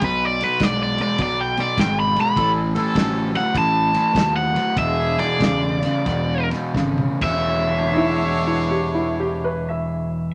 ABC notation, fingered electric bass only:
X:1
M:4/4
L:1/8
Q:"Swing" 1/4=96
K:Emix
V:1 name="Fingered electric bass" clef=bass
B,,,2 B,,,2 B,,,2 G,,,2 | A,,,2 A,,,2 A,,,2 ^D,,2 | E,,,2 E,,,2 E,,,2 G,,, E,,,- | E,,,8 |]